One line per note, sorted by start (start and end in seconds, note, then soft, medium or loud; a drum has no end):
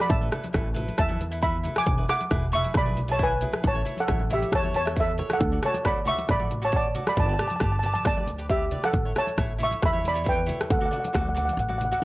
0.00 0.10 D5 medium
0.00 0.10 B5 medium
0.00 high conga medium
0.09 0.27 A1 loud
0.09 0.94 E5 medium
0.09 0.98 A5 medium
0.09 kick loud
0.09 closed hi-hat medium
0.21 0.28 E4 medium
0.21 0.28 A4 medium
0.21 0.28 B4 medium
0.31 0.46 E4 medium
0.31 0.46 A4 medium
0.31 0.46 B4 medium
0.31 cross-stick medium
0.31 closed hi-hat medium
0.31 low conga medium
0.44 closed hi-hat medium
0.44 high conga medium
0.53 0.88 A1 loud
0.53 0.68 E4 medium
0.53 0.68 A4 medium
0.53 0.68 B4 medium
0.53 kick medium
0.53 cross-stick medium
0.53 closed hi-hat medium
0.74 0.95 E4 medium
0.74 0.95 A4 medium
0.74 0.95 B4 medium
0.74 closed hi-hat medium
0.74 low conga medium
0.88 closed hi-hat medium
0.88 high conga medium
0.98 1.66 E2 loud
0.98 1.40 E5 medium
0.98 1.40 A5 loud
0.98 kick loud
0.98 cross-stick medium
0.98 closed hi-hat medium
1.08 1.22 E4 medium
1.08 1.22 A4 medium
1.08 1.22 B4 medium
1.08 high conga medium
1.21 closed hi-hat medium
1.21 low conga medium
1.31 1.38 E4 medium
1.31 1.38 A4 medium
1.31 1.38 B4 medium
1.31 closed hi-hat medium
1.41 1.56 E4 medium
1.41 1.56 A4 medium
1.41 1.56 B4 medium
1.41 1.74 E5 medium
1.41 1.78 B5 loud
1.41 kick medium
1.41 closed hi-hat medium
1.63 1.84 E4 medium
1.63 1.84 A4 medium
1.63 1.84 B4 medium
1.63 closed hi-hat medium
1.63 low conga medium
1.76 2.07 G#5 medium
1.76 2.08 D6 loud
1.76 cross-stick medium
1.76 closed hi-hat medium
1.76 high conga medium
1.86 2.03 E1 loud
1.86 kick loud
1.86 closed hi-hat medium
1.98 2.04 E4 medium
1.98 2.04 G#4 medium
1.98 2.04 B4 medium
2.08 2.23 E4 medium
2.08 2.23 G#4 medium
2.08 2.23 B4 medium
2.08 2.51 F#5 medium
2.08 2.55 D6 loud
2.08 cross-stick medium
2.08 closed hi-hat medium
2.08 low conga medium
2.21 closed hi-hat medium
2.21 high conga medium
2.30 2.65 E1 loud
2.30 2.45 E4 medium
2.30 2.45 G#4 medium
2.30 2.45 B4 medium
2.30 kick medium
2.30 cross-stick medium
2.30 closed hi-hat medium
2.52 2.73 E4 medium
2.52 2.73 G#4 medium
2.52 2.73 B4 medium
2.52 2.75 E5 medium
2.52 2.76 C#6 loud
2.52 closed hi-hat loud
2.52 low conga medium
2.64 closed hi-hat medium
2.64 high conga medium
2.74 3.42 B1 medium
2.74 3.08 D5 medium
2.74 3.11 B5 loud
2.74 kick loud
2.74 cross-stick medium
2.74 closed hi-hat medium
2.85 2.99 E4 medium
2.85 2.99 G#4 medium
2.85 2.99 B4 medium
2.85 high conga medium
2.97 closed hi-hat medium
2.97 low conga medium
3.08 3.15 E4 medium
3.08 3.15 G#4 medium
3.08 3.15 B4 medium
3.08 3.21 A5 medium
3.08 closed hi-hat medium
3.12 3.21 C#5 medium
3.19 3.33 E4 medium
3.19 3.33 G#4 medium
3.19 3.33 B4 medium
3.19 kick medium
3.19 closed hi-hat medium
3.23 3.63 B4 medium
3.23 3.67 G#5 loud
3.41 3.62 E4 medium
3.41 3.62 G#4 medium
3.41 3.62 B4 medium
3.41 closed hi-hat medium
3.41 low conga medium
3.53 cross-stick medium
3.53 closed hi-hat medium
3.53 high conga medium
3.63 3.81 A1 loud
3.63 kick loud
3.63 closed hi-hat medium
3.67 3.98 C#5 medium
3.67 4.00 A5 medium
3.75 3.81 E4 medium
3.75 3.81 A4 medium
3.75 3.81 C#5 medium
3.85 3.99 E4 medium
3.85 4.00 A4 medium
3.85 3.99 C#5 medium
3.85 closed hi-hat medium
3.85 low conga medium
3.97 4.29 A4 medium
3.97 4.32 F#5 medium
3.97 closed hi-hat medium
3.97 high conga medium
4.07 4.42 A1 loud
4.07 4.22 E4 medium
4.07 4.22 A4 medium
4.07 4.22 C#5 medium
4.07 kick medium
4.07 cross-stick medium
4.07 closed hi-hat medium
4.19 high conga medium
4.30 4.50 E4 medium
4.30 4.43 G4 medium
4.30 4.50 A4 medium
4.30 4.50 C#5 medium
4.30 4.42 E5 medium
4.30 closed hi-hat medium
4.30 low conga medium
4.42 closed hi-hat medium
4.42 high conga medium
4.52 5.19 E2 loud
4.52 4.74 C#5 medium
4.52 4.75 A5 loud
4.52 kick loud
4.52 cross-stick medium
4.52 closed hi-hat medium
4.63 4.76 E4 medium
4.63 4.77 A4 medium
4.63 4.76 C#5 medium
4.63 high conga medium
4.74 4.96 C#5 medium
4.74 4.98 A5 medium
4.74 closed hi-hat medium
4.74 low conga medium
4.86 4.92 E4 medium
4.86 4.92 A4 medium
4.86 4.92 E5 medium
4.86 cross-stick medium
4.86 closed hi-hat medium
4.96 5.10 E4 medium
4.96 5.10 A4 medium
4.96 5.10 B4 medium
4.96 kick medium
4.96 closed hi-hat medium
5.00 5.30 A4 medium
5.00 5.30 E5 medium
5.18 5.38 E4 medium
5.18 5.39 A4 medium
5.18 5.39 C#5 medium
5.18 closed hi-hat medium
5.18 low conga medium
5.30 5.62 A4 medium
5.30 5.65 F#5 medium
5.30 cross-stick medium
5.30 closed hi-hat medium
5.30 high conga medium
5.41 5.57 D2 loud
5.41 kick loud
5.41 closed hi-hat medium
5.52 5.58 F#4 medium
5.52 5.58 A4 medium
5.52 5.58 D5 medium
5.63 5.76 F#4 medium
5.63 5.76 A4 medium
5.63 5.85 C#5 medium
5.63 5.77 D5 medium
5.63 5.87 A5 medium
5.63 cross-stick medium
5.63 closed hi-hat medium
5.63 low conga medium
5.74 closed hi-hat medium
5.74 high conga medium
5.84 6.18 D2 medium
5.84 5.99 F#4 medium
5.84 5.99 A4 medium
5.84 5.99 D5 medium
5.84 6.06 D5 medium
5.84 6.06 B5 medium
5.84 kick medium
5.84 cross-stick medium
5.84 closed hi-hat medium
6.05 6.26 F#4 medium
6.05 6.26 A4 medium
6.05 6.26 D5 medium
6.05 6.28 E5 medium
6.05 6.30 C#6 loud
6.05 closed hi-hat medium
6.05 low conga medium
6.19 closed hi-hat medium
6.19 high conga medium
6.29 6.96 A1 loud
6.29 6.61 D5 medium
6.29 6.65 B5 medium
6.29 kick loud
6.29 cross-stick medium
6.29 closed hi-hat medium
6.39 6.53 F#4 medium
6.39 6.53 A4 medium
6.39 6.53 D5 medium
6.39 high conga medium
6.51 closed hi-hat medium
6.51 low conga medium
6.62 6.68 F#4 medium
6.62 6.68 A4 medium
6.62 6.73 C#5 medium
6.62 6.69 D5 medium
6.62 6.74 A5 medium
6.62 closed hi-hat medium
6.72 6.86 F#4 medium
6.72 6.87 A4 medium
6.72 6.87 D5 medium
6.72 kick medium
6.72 closed hi-hat medium
6.76 7.06 D5 medium
6.76 7.09 A5 medium
6.94 7.15 F#4 medium
6.94 7.15 A4 medium
6.94 7.15 D5 medium
6.94 closed hi-hat medium
6.94 low conga medium
7.07 7.17 D5 medium
7.07 7.17 B5 medium
7.07 cross-stick medium
7.07 closed hi-hat medium
7.07 high conga medium
7.17 7.34 G1 loud
7.17 7.26 D5 medium
7.17 7.25 A5 medium
7.17 kick loud
7.17 closed hi-hat medium
7.27 7.35 G4 medium
7.27 7.35 B4 medium
7.27 7.35 D5 medium
7.27 7.33 A5 medium
7.34 7.38 A5 medium
7.39 7.53 G4 medium
7.39 7.53 B4 medium
7.39 7.53 D5 medium
7.39 7.46 A5 medium
7.39 cross-stick medium
7.39 closed hi-hat medium
7.39 low conga medium
7.48 7.55 A5 medium
7.48 closed hi-hat medium
7.48 high conga medium
7.56 7.75 G4 medium
7.56 7.63 A5 medium
7.60 7.95 G1 loud
7.60 7.75 B4 medium
7.60 7.75 D5 medium
7.60 7.71 A5 medium
7.60 kick medium
7.60 cross-stick medium
7.60 closed hi-hat medium
7.72 7.78 A5 medium
7.79 8.03 G4 medium
7.79 7.85 A5 medium
7.83 8.03 B4 medium
7.83 8.03 D5 medium
7.83 7.93 A5 medium
7.83 closed hi-hat medium
7.83 low conga medium
7.94 8.00 A5 medium
7.94 closed hi-hat medium
7.94 high conga medium
8.05 8.73 D2 loud
8.05 8.47 D5 medium
8.05 8.47 A5 loud
8.05 kick loud
8.05 cross-stick medium
8.05 closed hi-hat medium
8.17 8.30 G4 medium
8.17 8.30 B4 medium
8.17 8.30 D5 medium
8.17 high conga medium
8.27 closed hi-hat medium
8.27 low conga medium
8.38 8.45 G4 medium
8.38 8.45 B4 medium
8.38 8.45 D5 medium
8.38 closed hi-hat medium
8.50 8.64 G4 medium
8.50 8.82 G4 medium
8.50 8.64 B4 medium
8.50 8.64 D5 medium
8.50 8.85 E5 medium
8.50 kick medium
8.50 closed hi-hat medium
8.71 8.92 G4 medium
8.71 8.92 B4 medium
8.71 8.92 D5 medium
8.71 closed hi-hat medium
8.71 low conga medium
8.84 9.14 A4 medium
8.84 9.17 F#5 medium
8.84 cross-stick medium
8.84 closed hi-hat medium
8.84 high conga medium
8.93 9.10 A1 loud
8.93 kick loud
8.93 closed hi-hat medium
9.05 9.11 E4 medium
9.05 9.11 A4 medium
9.05 9.11 C#5 medium
9.15 9.29 E4 medium
9.15 9.29 A4 medium
9.15 9.29 C#5 medium
9.15 9.58 C#5 medium
9.15 9.58 A5 loud
9.15 cross-stick medium
9.15 closed hi-hat medium
9.15 low conga medium
9.27 closed hi-hat medium
9.27 high conga medium
9.38 9.71 A1 loud
9.38 9.52 E4 medium
9.38 9.52 A4 medium
9.38 9.52 C#5 medium
9.38 kick medium
9.38 cross-stick medium
9.38 closed hi-hat medium
9.58 9.79 E4 medium
9.58 9.79 A4 medium
9.58 9.79 C#5 medium
9.58 closed hi-hat medium
9.58 low conga medium
9.63 9.82 E5 medium
9.63 9.84 C#6 medium
9.71 closed hi-hat medium
9.71 high conga medium
9.82 10.49 E2 loud
9.82 10.04 E5 medium
9.82 10.06 B5 medium
9.82 kick loud
9.82 cross-stick medium
9.82 closed hi-hat medium
9.92 10.06 E4 medium
9.92 10.06 A4 medium
9.92 10.06 C#5 medium
9.92 high conga medium
10.04 closed hi-hat medium
10.04 low conga medium
10.08 10.27 D5 medium
10.08 10.28 B5 loud
10.14 10.21 E4 medium
10.14 10.21 A4 medium
10.14 10.22 C#5 medium
10.14 closed hi-hat medium
10.24 10.39 E4 medium
10.24 10.39 A4 medium
10.24 10.39 C#5 medium
10.24 kick medium
10.24 closed hi-hat medium
10.28 10.68 B4 medium
10.28 10.69 G5 medium
10.46 10.67 E4 medium
10.46 10.67 A4 medium
10.46 10.67 C#5 medium
10.46 closed hi-hat medium
10.46 low conga medium
10.61 cross-stick medium
10.61 closed hi-hat medium
10.61 high conga medium
10.70 10.87 D2 loud
10.70 10.78 A4 medium
10.70 10.78 F#5 medium
10.70 kick loud
10.70 closed hi-hat medium
10.79 10.87 F#4 medium
10.79 10.88 A4 medium
10.79 10.88 D5 medium
10.79 10.84 F#5 medium
10.86 10.92 F#5 medium
10.91 11.05 F#4 medium
10.91 11.05 A4 medium
10.91 11.05 D5 medium
10.91 10.99 F#5 medium
10.91 closed hi-hat medium
10.91 low conga medium
11.00 11.07 F#5 medium
11.04 11.13 F#5 soft
11.04 closed hi-hat medium
11.04 high conga medium
11.13 11.48 D2 loud
11.13 11.28 F#4 medium
11.13 11.28 A4 medium
11.13 11.28 D5 medium
11.13 11.20 F#5 medium
11.13 kick medium
11.13 cross-stick medium
11.13 closed hi-hat medium
11.21 11.28 F#5 soft
11.26 11.36 F#5 medium
11.26 high conga medium
11.35 11.56 F#4 medium
11.35 11.56 A4 medium
11.35 11.56 D5 medium
11.35 11.44 F#5 soft
11.35 closed hi-hat loud
11.35 low conga medium
11.45 11.52 F#5 medium
11.45 closed hi-hat medium
11.45 high conga medium
11.53 11.91 A1 loud
11.53 11.59 F#5 soft
11.59 11.67 F#5 medium
11.59 closed hi-hat medium
11.68 11.82 F#4 medium
11.68 11.82 A4 soft
11.68 11.82 D5 medium
11.68 11.75 F#5 soft
11.68 high conga medium
11.78 11.83 F#5 medium
11.78 closed hi-hat medium
11.78 low conga medium
11.85 11.91 F#5 medium
11.91 11.98 F#4 medium
11.91 11.98 A4 medium
11.91 11.98 D5 medium
11.91 11.98 F#5 medium
11.91 closed hi-hat medium
12.00 12.04 F#5 medium